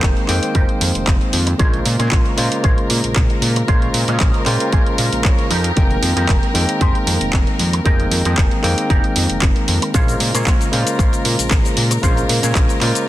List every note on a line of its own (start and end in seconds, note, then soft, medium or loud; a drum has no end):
0.00 0.14 F1 medium
0.00 0.25 D#3 medium
0.00 0.26 G#3 medium
0.00 0.26 A#3 medium
0.00 0.26 C4 medium
0.00 0.23 D#4 medium
0.00 0.23 G4 medium
0.00 0.23 G#4 medium
0.00 0.23 A#4 medium
0.00 1.61 C5 medium
0.00 0.27 G5 loud
0.00 kick loud
0.00 clap loud
0.00 closed hi-hat soft
0.17 closed hi-hat soft
0.27 0.40 F2 loud
0.27 1.56 D#3 medium
0.27 1.56 G#3 medium
0.27 1.56 A#3 medium
0.27 1.57 C4 medium
0.27 1.57 G5 loud
0.27 clap soft
0.27 open hi-hat medium
0.43 closed hi-hat soft
0.55 0.66 F1 medium
0.55 0.69 D#4 medium
0.55 0.69 G4 medium
0.55 0.69 G#4 medium
0.55 0.69 A#4 medium
0.55 kick loud
0.55 closed hi-hat soft
0.69 closed hi-hat soft
0.81 0.92 F2 medium
0.81 muted clean electric guitar stroke soft
0.81 open hi-hat loud
0.95 1.05 F1 soft
0.95 closed hi-hat soft
1.07 1.18 F1 loud
1.07 kick loud
1.07 clap loud
1.07 closed hi-hat soft
1.21 muted clean electric guitar stroke soft
1.21 closed hi-hat soft
1.33 1.54 F2 medium
1.33 open hi-hat medium
1.47 muted clean electric guitar stroke medium
1.47 closed hi-hat soft
1.58 1.81 A#1 medium
1.58 2.34 C#3 medium
1.58 2.35 G#3 medium
1.58 2.35 A#3 medium
1.58 1.79 C#4 loud
1.58 2.35 F4 medium
1.58 1.79 G#4 medium
1.58 9.93 A#4 medium
1.58 1.79 C5 loud
1.58 2.35 C5 medium
1.58 kick loud
1.58 closed hi-hat soft
1.74 closed hi-hat soft
1.86 1.97 A#2 loud
1.86 open hi-hat loud
1.99 2.09 A#2 loud
1.99 2.32 C#4 medium
1.99 2.32 G#4 medium
1.99 2.32 C5 medium
1.99 closed hi-hat soft
2.12 2.23 A#1 medium
2.12 kick loud
2.12 clap loud
2.12 closed hi-hat soft
2.26 closed hi-hat soft
2.36 2.49 A#2 loud
2.36 3.65 C#3 medium
2.36 3.65 G#3 medium
2.36 3.65 A#3 medium
2.36 3.66 F4 medium
2.36 3.65 C5 medium
2.36 open hi-hat medium
2.52 closed hi-hat soft
2.64 2.75 A#1 medium
2.64 2.78 C#4 medium
2.64 2.78 G#4 medium
2.64 2.78 C5 medium
2.64 kick loud
2.64 closed hi-hat soft
2.78 closed hi-hat soft
2.90 3.01 A#2 medium
2.90 muted clean electric guitar stroke soft
2.90 open hi-hat loud
3.04 3.14 A#1 soft
3.04 closed hi-hat soft
3.16 3.27 A#1 medium
3.16 kick loud
3.16 clap loud
3.16 closed hi-hat soft
3.30 muted clean electric guitar stroke soft
3.30 closed hi-hat soft
3.42 3.63 A#2 medium
3.42 open hi-hat medium
3.56 muted clean electric guitar stroke medium
3.56 closed hi-hat soft
3.67 3.89 A#1 medium
3.67 4.43 C#3 medium
3.67 4.43 G#3 medium
3.67 4.44 A#3 medium
3.67 3.88 C#4 loud
3.67 4.44 F4 medium
3.67 3.88 G#4 loud
3.67 3.88 C5 loud
3.67 4.44 C5 medium
3.67 kick loud
3.67 closed hi-hat soft
3.82 closed hi-hat soft
3.94 4.05 A#2 loud
3.94 open hi-hat medium
4.08 4.18 A#2 loud
4.08 4.41 C#4 medium
4.08 4.41 G#4 medium
4.08 4.41 D#5 medium
4.08 closed hi-hat soft
4.20 4.31 A#1 medium
4.20 kick loud
4.20 clap loud
4.20 closed hi-hat soft
4.34 closed hi-hat soft
4.45 4.57 A#2 loud
4.45 5.49 C#3 medium
4.45 5.49 G#3 medium
4.45 5.49 A#3 medium
4.45 5.50 F4 loud
4.45 5.49 C5 medium
4.45 4.71 G5 medium
4.45 clap soft
4.45 open hi-hat medium
4.60 closed hi-hat medium
4.72 4.84 A#1 medium
4.72 4.87 C#4 medium
4.72 4.87 G#4 medium
4.72 4.87 C5 medium
4.72 4.97 G#5 medium
4.72 kick loud
4.72 closed hi-hat soft
4.86 closed hi-hat soft
4.98 5.09 A#2 medium
4.98 5.23 F5 medium
4.98 muted clean electric guitar stroke soft
4.98 open hi-hat loud
5.13 5.22 A#1 soft
5.13 closed hi-hat soft
5.25 5.36 A#1 loud
5.25 5.49 C#5 medium
5.25 kick loud
5.25 clap loud
5.25 closed hi-hat soft
5.38 muted clean electric guitar stroke soft
5.38 closed hi-hat soft
5.50 5.72 F2 medium
5.50 6.03 D#4 medium
5.50 6.03 G4 medium
5.50 6.03 G#4 medium
5.50 6.03 A#4 medium
5.50 open hi-hat medium
5.64 closed hi-hat medium
5.76 5.98 F1 loud
5.76 6.52 D#3 medium
5.76 6.52 G#3 medium
5.76 6.52 A#3 medium
5.76 6.52 C4 medium
5.76 6.53 G5 medium
5.76 kick loud
5.76 closed hi-hat medium
5.91 closed hi-hat soft
6.03 6.14 F2 loud
6.03 open hi-hat medium
6.16 6.26 F2 loud
6.16 6.49 D#4 medium
6.16 6.49 G4 medium
6.16 6.49 G#4 medium
6.16 6.49 A#4 medium
6.16 closed hi-hat medium
6.29 6.40 F1 medium
6.29 kick loud
6.29 clap loud
6.29 closed hi-hat medium
6.43 closed hi-hat soft
6.54 6.66 F2 loud
6.54 7.82 D#3 medium
6.54 7.82 G#3 medium
6.54 7.83 A#3 medium
6.54 7.83 C4 medium
6.54 7.83 G5 loud
6.54 open hi-hat medium
6.69 closed hi-hat medium
6.80 6.92 F1 medium
6.80 6.95 D#4 medium
6.80 6.95 G4 medium
6.80 6.95 G#4 medium
6.80 6.95 C5 medium
6.80 kick loud
6.80 closed hi-hat medium
6.95 closed hi-hat soft
7.07 7.18 F2 medium
7.07 muted clean electric guitar stroke soft
7.07 open hi-hat loud
7.21 7.31 F1 soft
7.21 closed hi-hat medium
7.33 7.44 F1 loud
7.33 kick loud
7.33 clap loud
7.33 closed hi-hat medium
7.47 muted clean electric guitar stroke soft
7.47 closed hi-hat soft
7.59 7.80 F2 medium
7.59 open hi-hat medium
7.73 muted clean electric guitar stroke medium
7.73 closed hi-hat medium
7.84 8.06 F1 loud
7.84 8.60 D#3 medium
7.84 8.60 G#3 medium
7.84 8.61 A#3 medium
7.84 8.61 C4 medium
7.84 8.06 D#4 loud
7.84 8.06 G4 loud
7.84 8.06 G#4 loud
7.84 8.06 A#4 loud
7.84 8.61 G5 medium
7.84 kick loud
7.84 closed hi-hat medium
8.00 closed hi-hat soft
8.11 8.22 F2 loud
8.11 open hi-hat medium
8.25 8.35 F2 loud
8.25 8.58 D#4 medium
8.25 8.58 G4 medium
8.25 8.58 G#4 medium
8.25 8.58 A#4 medium
8.25 closed hi-hat medium
8.38 8.49 F1 medium
8.38 kick loud
8.38 clap loud
8.38 closed hi-hat medium
8.51 closed hi-hat soft
8.62 8.75 F2 loud
8.62 9.91 D#3 medium
8.62 9.91 G#3 medium
8.62 9.91 A#3 medium
8.62 9.91 C4 medium
8.62 9.92 G5 loud
8.62 clap soft
8.62 open hi-hat medium
8.78 closed hi-hat medium
8.89 9.01 F1 medium
8.89 9.04 D#4 medium
8.89 9.04 G4 medium
8.89 9.04 G#4 medium
8.89 9.04 A#4 medium
8.89 kick loud
8.89 closed hi-hat medium
9.04 closed hi-hat soft
9.16 9.27 F2 loud
9.16 muted clean electric guitar stroke soft
9.16 open hi-hat loud
9.30 9.40 F1 soft
9.30 closed hi-hat medium
9.42 9.53 F1 medium
9.42 kick loud
9.42 clap loud
9.42 closed hi-hat medium
9.56 muted clean electric guitar stroke soft
9.56 closed hi-hat soft
9.68 9.79 F2 medium
9.68 open hi-hat medium
9.82 muted clean electric guitar stroke medium
9.82 closed hi-hat medium
9.93 10.15 A#1 loud
9.93 10.69 C#3 medium
9.93 10.69 G#3 medium
9.93 10.70 A#3 medium
9.93 10.14 C#4 loud
9.93 10.70 F4 medium
9.93 10.14 G#4 medium
9.93 13.08 A#4 medium
9.93 10.70 C5 medium
9.93 10.14 C5 loud
9.93 kick loud
9.93 closed hi-hat medium
9.93 cabasa medium
10.08 closed hi-hat soft
10.08 cabasa soft
10.20 10.31 A#2 loud
10.20 open hi-hat loud
10.34 10.44 A#2 loud
10.34 10.67 C#4 medium
10.34 10.67 G#4 medium
10.34 10.67 C5 medium
10.34 closed hi-hat medium
10.34 cabasa medium
10.47 10.57 A#1 medium
10.47 kick loud
10.47 clap loud
10.47 closed hi-hat medium
10.47 cabasa medium
10.61 closed hi-hat soft
10.61 cabasa soft
10.71 10.84 A#2 loud
10.71 12.00 C#3 medium
10.71 12.00 G#3 medium
10.71 12.00 A#3 medium
10.71 12.01 F4 medium
10.71 12.00 C5 medium
10.71 open hi-hat medium
10.87 closed hi-hat medium
10.87 cabasa medium
10.98 11.10 A#1 medium
10.98 11.13 C#4 medium
10.98 11.13 G#4 medium
10.98 11.13 C5 medium
10.98 kick loud
10.98 closed hi-hat medium
10.98 cabasa medium
11.13 closed hi-hat soft
11.13 cabasa soft
11.25 11.36 A#2 medium
11.25 muted clean electric guitar stroke soft
11.25 open hi-hat loud
11.39 11.49 A#1 soft
11.39 closed hi-hat medium
11.39 cabasa medium
11.51 11.62 A#1 loud
11.51 kick loud
11.51 clap loud
11.51 closed hi-hat medium
11.51 cabasa medium
11.65 muted clean electric guitar stroke soft
11.65 closed hi-hat soft
11.65 cabasa soft
11.77 11.98 A#2 medium
11.77 open hi-hat medium
11.91 muted clean electric guitar stroke medium
11.91 closed hi-hat medium
11.91 cabasa medium
12.02 12.24 A#1 loud
12.02 12.78 C#3 medium
12.02 12.78 G#3 medium
12.02 12.78 A#3 medium
12.02 12.23 C#4 loud
12.02 12.79 F4 medium
12.02 12.23 G#4 loud
12.02 12.78 C5 medium
12.02 12.23 C5 loud
12.02 kick loud
12.02 closed hi-hat soft
12.02 cabasa medium
12.17 closed hi-hat soft
12.17 cabasa soft
12.29 12.40 A#2 loud
12.29 open hi-hat loud
12.43 12.53 A#2 loud
12.43 12.75 C#4 medium
12.43 12.75 G#4 medium
12.43 12.75 C5 medium
12.43 closed hi-hat medium
12.43 cabasa medium
12.55 12.66 A#1 medium
12.55 kick loud
12.55 clap loud
12.55 closed hi-hat soft
12.55 cabasa medium
12.69 closed hi-hat soft
12.69 cabasa soft
12.80 12.92 A#2 loud
12.80 13.08 C#3 medium
12.80 13.08 G#3 medium
12.80 13.08 A#3 medium
12.80 13.08 F4 loud
12.80 13.08 C5 medium
12.80 clap soft
12.80 open hi-hat medium
12.95 closed hi-hat medium
12.95 cabasa medium